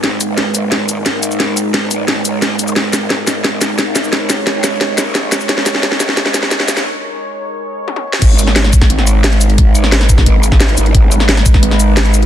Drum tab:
CC |----------------|----------------|----------------|----------------|
HH |x-x-x-x-x-x-x-x-|x-x-x-x-x-x-x-x-|x-x-x-x-x-x-x-x-|x-x-x-x-x-x-x-x-|
SH |--x---x---x-x-xx|--x---x---x-x-xx|--x---x---x-x-xx|--x---x---x-x-xx|
SD |o---o---o---o---|o---o---o---o---|o-o-o-o-o-o-o-o-|o-o-o-o-o-o-o-o-|
T1 |----------------|----------------|----------------|----------------|
BD |----------------|----------------|----------------|----------------|

CC |----------------|----------------|x---------------|----------------|
HH |x-x-x-x-x-x-x-x-|----------------|x-x-x-x-x-x-xxxx|x-x-x-x-x-x-xxxx|
SH |--x---x---x-x-xx|----------------|--x---x---x-x-x-|--x---x---x-x-x-|
SD |oooooooooooooooo|---------------o|---ooo-o-o--o---|---ooo-o---oo---|
T1 |----------------|------------oo--|----------------|----------------|
BD |----------------|----------------|o-----oo--------|o-----ooo--o----|

CC |----------------|
HH |x-x-x-x-x-x-xxxx|
SH |--x---x---x-x-x-|
SD |---ooo-o-o--o---|
T1 |----------------|
BD |o-----oo--------|